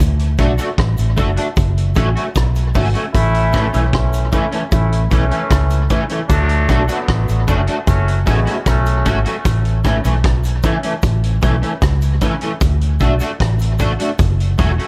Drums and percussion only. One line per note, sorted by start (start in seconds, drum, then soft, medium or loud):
0.00 closed hi-hat loud
0.00 cabasa medium
0.19 closed hi-hat medium
0.38 kick loud
0.38 cross-stick medium
0.38 closed hi-hat medium
0.38 cabasa soft
0.58 closed hi-hat medium
0.58 cabasa medium
0.78 kick loud
0.78 cross-stick loud
0.78 closed hi-hat medium
0.97 closed hi-hat medium
0.97 cabasa medium
1.17 kick loud
1.17 closed hi-hat medium
1.17 cabasa medium
1.37 closed hi-hat medium
1.56 kick loud
1.56 closed hi-hat medium
1.56 cabasa medium
1.78 closed hi-hat medium
1.95 kick loud
1.95 closed hi-hat medium
1.95 cabasa medium
2.17 closed hi-hat soft
2.35 kick loud
2.35 cross-stick loud
2.35 closed hi-hat medium
2.35 cabasa medium
2.55 closed hi-hat medium
2.55 cabasa soft
2.74 kick medium
2.74 open hi-hat medium
2.74 cabasa medium
2.95 closed hi-hat medium
3.14 kick loud
3.14 closed hi-hat loud
3.14 cabasa medium
3.34 closed hi-hat medium
3.53 kick loud
3.53 cross-stick medium
3.53 closed hi-hat medium
3.53 cabasa soft
3.74 closed hi-hat medium
3.74 cabasa medium
3.93 kick loud
3.93 cross-stick loud
3.93 closed hi-hat medium
4.13 closed hi-hat medium
4.13 cabasa medium
4.32 kick medium
4.32 closed hi-hat medium
4.32 cabasa medium
4.52 closed hi-hat medium
4.72 kick loud
4.72 closed hi-hat medium
4.72 cabasa medium
4.92 closed hi-hat medium
5.11 kick loud
5.11 closed hi-hat medium
5.11 cabasa medium
5.31 closed hi-hat soft
5.50 kick loud
5.50 cross-stick loud
5.50 closed hi-hat medium
5.50 cabasa medium
5.70 closed hi-hat soft
5.70 cabasa soft
5.90 kick loud
5.90 closed hi-hat medium
5.90 cabasa medium
6.09 closed hi-hat medium
6.29 kick loud
6.29 closed hi-hat loud
6.29 cabasa medium
6.49 closed hi-hat medium
6.68 kick loud
6.68 cross-stick medium
6.68 closed hi-hat medium
6.68 cabasa soft
6.88 closed hi-hat medium
6.88 cabasa medium
7.08 kick loud
7.08 cross-stick loud
7.08 closed hi-hat medium
7.28 closed hi-hat medium
7.28 cabasa medium
7.48 kick medium
7.48 closed hi-hat medium
7.48 cabasa medium
7.67 closed hi-hat medium
7.87 kick loud
7.87 closed hi-hat medium
7.87 cabasa medium
8.08 closed hi-hat medium
8.26 kick loud
8.26 closed hi-hat medium
8.26 cabasa medium
8.47 closed hi-hat medium
8.66 kick loud
8.66 cross-stick loud
8.66 closed hi-hat medium
8.66 cabasa medium
8.86 closed hi-hat medium
8.86 cabasa medium
9.05 kick medium
9.05 closed hi-hat medium
9.05 cabasa medium
9.25 closed hi-hat medium
9.45 kick loud
9.45 closed hi-hat loud
9.45 cabasa medium
9.65 closed hi-hat soft
9.84 kick loud
9.84 cross-stick medium
9.84 closed hi-hat medium
9.84 cabasa soft
10.05 closed hi-hat medium
10.05 cabasa medium
10.24 kick loud
10.24 cross-stick loud
10.24 closed hi-hat medium
10.43 closed hi-hat medium
10.43 cabasa medium
10.63 kick medium
10.63 closed hi-hat medium
10.63 cabasa medium
10.83 closed hi-hat medium
11.02 kick loud
11.02 closed hi-hat medium
11.02 cabasa medium
11.23 closed hi-hat medium
11.42 kick loud
11.42 closed hi-hat medium
11.42 cabasa medium
11.63 closed hi-hat soft
11.82 kick loud
11.82 cross-stick loud
11.82 closed hi-hat medium
11.82 cabasa medium
12.01 closed hi-hat medium
12.01 cabasa medium
12.21 kick medium
12.21 closed hi-hat medium
12.21 cabasa medium
12.41 closed hi-hat medium
12.61 kick loud
12.61 closed hi-hat medium
12.61 cabasa medium
12.81 closed hi-hat medium
12.99 kick medium
12.99 closed hi-hat medium
12.99 cabasa soft
13.19 closed hi-hat medium
13.19 cabasa medium
13.40 kick loud
13.40 cross-stick loud
13.40 closed hi-hat medium
13.59 closed hi-hat medium
13.59 cabasa medium
13.79 kick medium
13.79 closed hi-hat medium
13.79 cabasa medium
14.00 closed hi-hat medium
14.18 kick loud
14.18 closed hi-hat medium
14.18 cabasa medium
14.40 closed hi-hat medium
14.58 kick loud
14.58 closed hi-hat medium
14.58 cabasa soft
14.79 closed hi-hat soft